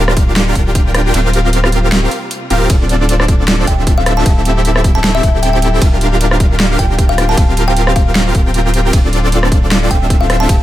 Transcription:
0.00 0.54 D1 loud
0.00 1.13 D3 medium
0.00 1.11 G3 medium
0.00 1.13 A#3 medium
0.00 0.54 D4 loud
0.00 0.54 F4 medium
0.00 2.67 F4 medium
0.00 0.54 G4 medium
0.00 0.54 A#4 medium
0.00 0.54 F5 loud
0.08 cross-stick medium
0.17 kick loud
0.17 closed hi-hat medium
0.36 snare loud
0.36 closed hi-hat medium
0.56 1.12 D1 loud
0.56 1.12 D4 medium
0.56 1.12 F4 medium
0.56 1.12 G4 medium
0.56 1.12 A#4 medium
0.56 1.12 G5 loud
0.56 kick medium
0.56 closed hi-hat medium
0.75 kick loud
0.75 closed hi-hat medium
0.95 cross-stick medium
0.95 closed hi-hat medium
1.14 2.08 D1 loud
1.14 5.78 C3 medium
1.14 2.68 G3 medium
1.14 2.68 A#3 medium
1.14 2.09 C4 medium
1.14 2.09 F4 medium
1.14 2.09 G4 medium
1.14 2.09 A#4 medium
1.14 2.09 F5 loud
1.14 closed hi-hat medium
1.14 ride soft
1.33 closed hi-hat medium
1.53 closed hi-hat medium
1.64 cross-stick medium
1.72 closed hi-hat medium
1.92 snare loud
1.92 closed hi-hat medium
2.11 closed hi-hat medium
2.31 closed hi-hat medium
2.50 2.68 D1 loud
2.50 2.68 C4 loud
2.50 2.68 F4 medium
2.50 2.68 G4 medium
2.50 2.68 A#4 medium
2.50 2.68 F5 loud
2.50 closed hi-hat medium
2.70 3.66 D1 loud
2.70 4.24 F3 medium
2.70 5.79 A3 medium
2.70 3.65 C4 medium
2.70 4.24 D4 medium
2.70 3.65 D4 medium
2.70 kick loud
2.70 closed hi-hat medium
2.70 ride soft
2.89 closed hi-hat medium
3.09 closed hi-hat medium
3.20 cross-stick medium
3.28 kick loud
3.28 closed hi-hat medium
3.48 snare loud
3.48 closed hi-hat medium
3.67 4.24 D1 loud
3.67 3.80 G5 medium
3.67 kick medium
3.67 closed hi-hat medium
3.87 kick loud
3.87 closed hi-hat medium
3.98 4.09 F5 medium
4.06 cross-stick medium
4.06 closed hi-hat medium
4.17 4.28 A5 medium
4.26 5.21 D1 loud
4.26 8.89 G3 medium
4.26 5.21 C4 medium
4.26 5.21 E4 medium
4.26 5.80 E4 medium
4.26 5.21 G4 medium
4.26 5.21 A4 medium
4.26 5.21 E5 loud
4.26 kick loud
4.26 closed hi-hat medium
4.26 ride soft
4.45 closed hi-hat medium
4.65 closed hi-hat medium
4.76 cross-stick medium
4.84 kick loud
4.84 closed hi-hat medium
4.95 5.01 A5 medium
5.04 5.11 A5 medium
5.04 snare loud
5.04 closed hi-hat medium
5.15 5.20 E5 medium
5.23 5.80 D1 loud
5.23 5.80 C4 medium
5.23 5.79 G4 medium
5.23 5.80 A4 medium
5.23 5.30 E5 medium
5.23 5.80 G5 loud
5.23 kick loud
5.23 closed hi-hat medium
5.43 5.49 G5 medium
5.43 closed hi-hat medium
5.53 5.59 G5 medium
5.62 closed hi-hat medium
5.81 6.77 D1 loud
5.81 7.36 D3 medium
5.81 8.90 A#3 medium
5.81 10.45 F4 medium
5.81 kick loud
5.81 closed hi-hat medium
5.81 ride soft
6.01 closed hi-hat medium
6.21 closed hi-hat medium
6.31 cross-stick medium
6.40 kick loud
6.40 closed hi-hat medium
6.60 snare loud
6.60 closed hi-hat medium
6.79 7.36 D1 loud
6.79 7.35 D4 medium
6.79 7.35 F4 medium
6.79 7.35 G4 medium
6.79 7.35 A#4 medium
6.79 6.92 G5 medium
6.79 7.35 G5 loud
6.79 kick medium
6.79 closed hi-hat medium
6.98 kick loud
6.98 closed hi-hat medium
7.09 7.20 F5 medium
7.18 cross-stick medium
7.18 closed hi-hat medium
7.29 7.40 A5 medium
7.37 8.33 D1 loud
7.37 8.92 C3 medium
7.37 8.33 C4 medium
7.37 8.33 F4 medium
7.37 8.33 G4 medium
7.37 8.33 A#4 medium
7.37 8.33 F5 loud
7.37 kick loud
7.37 closed hi-hat medium
7.37 ride soft
7.57 closed hi-hat medium
7.68 7.79 G5 medium
7.77 closed hi-hat medium
7.87 cross-stick medium
7.96 8.51 F5 medium
7.96 kick loud
7.96 closed hi-hat medium
8.15 snare loud
8.15 closed hi-hat medium
8.35 8.92 D1 loud
8.35 8.91 C4 medium
8.35 8.91 F4 medium
8.35 8.91 G4 medium
8.35 8.91 A#4 medium
8.35 8.91 G5 loud
8.35 kick loud
8.35 closed hi-hat medium
8.54 closed hi-hat medium
8.74 closed hi-hat medium
8.93 9.89 D1 loud
8.93 10.48 D3 medium
8.93 10.48 A3 medium
8.93 9.89 C4 medium
8.93 10.63 C4 medium
8.93 9.89 D4 medium
8.93 9.89 F4 medium
8.93 9.89 A4 medium
8.93 kick loud
8.93 closed hi-hat medium
8.93 ride medium
9.13 closed hi-hat medium
9.32 closed hi-hat medium
9.43 cross-stick medium
9.52 kick loud
9.52 closed hi-hat medium
9.71 snare loud
9.71 closed hi-hat medium
9.91 10.47 D1 loud
9.91 10.47 C4 medium
9.91 10.47 D4 medium
9.91 10.47 F4 medium
9.91 10.47 A4 medium
9.91 10.47 E5 loud
9.91 10.03 G5 medium
9.91 kick medium
9.91 closed hi-hat medium
10.10 kick loud
10.10 closed hi-hat medium
10.21 10.32 F5 medium
10.30 cross-stick medium
10.30 closed hi-hat medium
10.40 10.52 A5 medium
10.49 10.63 D1 loud
10.49 10.63 E3 medium
10.49 10.63 A3 medium
10.49 10.63 C4 medium
10.49 10.63 E4 medium
10.49 10.63 G4 medium
10.49 10.63 A4 medium
10.49 10.63 E5 loud
10.49 kick loud
10.49 closed hi-hat medium
10.49 ride soft

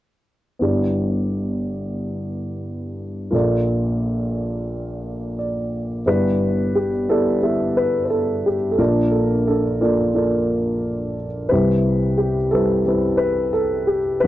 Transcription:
0.59 3.30 G1 soft
0.59 3.30 G2 soft
0.59 3.29 B3 soft
0.59 3.30 E4 soft
0.59 3.30 G4 soft
0.59 3.31 D5 soft
3.31 6.02 A#1 soft
3.31 6.02 A#2 soft
3.31 6.01 A#3 soft
3.31 6.01 F4 soft
3.31 6.02 A4 soft
3.31 5.37 D5 medium
5.39 6.03 D5 soft
6.06 8.75 G1 soft
6.06 8.75 G2 soft
6.06 6.90 B3 soft
6.06 6.90 E4 soft
6.06 6.74 G4 soft
6.06 6.77 B4 medium
6.06 6.91 D5 medium
6.75 7.08 G4 medium
7.09 7.37 B3 soft
7.09 7.37 E4 soft
7.09 7.37 G4 soft
7.09 7.73 A4 medium
7.09 7.38 D5 medium
7.42 8.54 B3 soft
7.42 8.54 E4 soft
7.42 8.45 G4 soft
7.42 8.54 E5 soft
7.77 8.03 B4 medium
8.05 8.11 B4 soft
8.10 8.45 A4 medium
8.46 8.73 G4 medium
8.71 8.79 A4 medium
8.78 11.47 A#1 soft
8.78 11.47 A#2 soft
8.78 9.62 A#3 medium
8.78 9.48 D4 soft
8.78 9.62 F4 soft
8.78 9.14 A#4 medium
8.78 9.63 D5 medium
9.11 9.44 A4 medium
9.47 11.14 D4 soft
9.47 9.81 A4 medium
9.81 10.09 A#3 soft
9.81 10.09 F4 soft
9.81 10.09 A4 soft
9.81 10.09 D5 medium
10.14 11.26 A#3 soft
10.14 11.26 F4 soft
10.14 11.26 A4 soft
10.14 11.27 D5 soft
11.49 14.20 C2 soft
11.49 14.19 C3 soft
11.49 12.34 G3 medium
11.49 12.34 C4 soft
11.49 12.53 E4 soft
11.49 11.51 B4 medium
11.49 12.35 B4 medium
12.18 12.53 G4 medium
12.51 12.81 G3 medium
12.51 12.81 C4 soft
12.51 12.82 E4 soft
12.51 13.22 A4 medium
12.51 12.82 B4 medium
12.86 13.98 G3 medium
12.86 13.98 C4 soft
12.86 13.99 E4 soft
12.86 13.16 B4 medium
13.17 13.54 B4 medium
13.53 13.89 A4 medium
13.87 14.23 G4 medium
14.20 14.27 D2 soft
14.20 14.27 D3 soft
14.20 14.27 F#3 soft
14.20 14.27 C4 medium
14.20 14.27 D4 soft
14.20 14.27 B4 medium

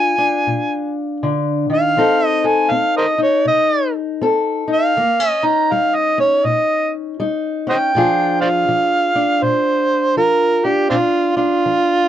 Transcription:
0.00 0.42 F3 medium
0.00 0.17 D4 medium
0.00 1.94 F4 medium
0.00 0.94 G#5 medium
0.18 1.94 D4 medium
0.47 1.17 A#2 medium
1.23 1.69 D3 medium
1.70 1.98 D#3 medium
1.74 2.27 F5 medium
1.97 2.66 F3 medium
1.97 2.70 C4 medium
1.97 3.18 D#4 medium
1.97 2.43 A4 medium
2.27 2.48 D#5 medium
2.44 4.21 A4 medium
2.44 2.72 G#5 medium
2.71 3.41 C4 medium
2.71 2.96 F5 medium
2.97 3.06 A#4 medium
2.97 3.06 C5 medium
2.97 3.21 D#5 medium
3.18 4.66 D#4 medium
3.23 3.47 C#5 medium
3.45 4.15 C3 medium
3.45 3.92 D#5 medium
4.22 4.90 C4 medium
4.22 4.93 A4 medium
4.68 4.93 D#4 medium
4.73 5.29 F5 medium
4.97 5.65 D#3 medium
4.97 5.20 A#3 medium
5.20 6.17 C#4 soft
5.29 5.47 D#5 medium
5.43 7.19 D#4 medium
5.43 5.73 A#5 medium
5.72 6.40 G3 medium
5.72 5.97 F5 medium
5.95 6.19 D#5 medium
6.18 7.66 C#4 medium
6.18 6.47 C#5 medium
6.45 7.13 A#2 medium
6.45 6.90 D#5 medium
7.20 7.88 G3 medium
7.20 7.91 D#4 medium
7.67 7.91 C#4 medium
7.67 7.76 C5 medium
7.67 7.76 D#5 medium
7.67 8.40 G5 medium
7.95 8.63 A#2 medium
7.95 8.68 F3 medium
7.95 9.14 D4 medium
7.95 8.41 F4 medium
7.95 10.89 G#4 medium
8.41 10.17 F4 medium
8.41 8.49 C5 medium
8.41 8.48 D5 medium
8.41 9.44 F5 medium
8.69 9.37 F3 medium
9.15 10.63 D4 medium
9.42 10.11 A#2 medium
9.42 10.14 C5 medium
10.17 10.85 F3 medium
10.17 12.08 F4 medium
10.17 10.67 A#4 medium
10.65 10.88 D4 soft
10.65 10.89 G4 medium
10.90 11.59 A#2 medium
10.90 10.96 C4 medium
10.90 10.98 D4 medium
10.90 11.35 D4 medium
10.90 11.37 F4 medium
11.37 12.08 D4 medium
11.37 12.08 F4 medium
11.66 12.08 F3 medium

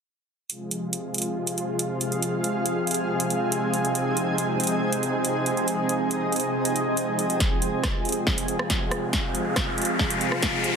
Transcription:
0.50 7.36 C3 medium
0.50 7.36 F3 medium
0.50 7.36 G#3 medium
0.50 10.76 C4 medium
0.50 3.92 F4 medium
0.50 7.36 G#4 medium
0.50 closed hi-hat medium
0.71 closed hi-hat soft
0.86 10.76 G#4 medium
0.86 10.76 G#5 medium
0.93 closed hi-hat medium
0.99 5.05 F5 medium
1.14 closed hi-hat soft
1.18 closed hi-hat medium
1.22 closed hi-hat medium
1.47 closed hi-hat medium
1.58 closed hi-hat soft
1.79 closed hi-hat medium
2.01 closed hi-hat soft
2.12 closed hi-hat soft
2.22 closed hi-hat medium
2.44 closed hi-hat soft
2.66 closed hi-hat medium
2.87 closed hi-hat soft
2.91 closed hi-hat medium
2.94 closed hi-hat medium
3.20 closed hi-hat medium
3.30 closed hi-hat soft
3.52 closed hi-hat medium
3.74 closed hi-hat soft
3.85 closed hi-hat soft
3.95 7.37 D#4 medium
3.95 closed hi-hat medium
4.17 closed hi-hat soft
4.38 closed hi-hat medium
4.60 closed hi-hat soft
4.64 closed hi-hat medium
4.67 closed hi-hat medium
4.92 8.89 D#5 medium
4.92 closed hi-hat medium
5.03 closed hi-hat soft
5.25 closed hi-hat medium
5.46 closed hi-hat soft
5.57 closed hi-hat soft
5.68 closed hi-hat medium
5.89 closed hi-hat soft
6.11 closed hi-hat medium
6.32 closed hi-hat soft
6.36 closed hi-hat medium
6.40 closed hi-hat medium
6.65 closed hi-hat medium
6.76 closed hi-hat soft
6.97 closed hi-hat medium
7.19 closed hi-hat soft
7.30 closed hi-hat soft
7.40 10.76 C3 medium
7.40 10.76 F3 medium
7.40 10.76 G#3 medium
7.40 10.76 F4 medium
7.40 10.76 G#4 medium
7.40 kick medium
7.40 snare soft
7.40 closed hi-hat medium
7.40 riser medium
7.62 closed hi-hat medium
7.84 kick medium
7.84 cross-stick medium
7.84 snare soft
7.84 closed hi-hat medium
7.88 10.76 F5 medium
8.05 closed hi-hat soft
8.09 closed hi-hat medium
8.12 closed hi-hat medium
8.27 kick medium
8.27 snare medium
8.38 closed hi-hat medium
8.48 closed hi-hat medium
8.59 cross-stick medium
8.70 kick medium
8.70 snare medium
8.70 closed hi-hat medium
8.91 cross-stick medium
8.91 closed hi-hat soft
9.13 kick medium
9.13 snare medium
9.13 closed hi-hat medium
9.35 closed hi-hat medium
9.56 kick loud
9.56 cross-stick medium
9.56 snare medium
9.56 closed hi-hat medium
9.78 closed hi-hat soft
9.82 closed hi-hat medium
9.85 closed hi-hat medium
9.99 kick loud
9.99 snare medium
10.11 closed hi-hat medium
10.21 closed hi-hat medium
10.32 cross-stick medium
10.43 kick medium
10.43 snare medium
10.43 closed hi-hat medium
10.64 closed hi-hat medium

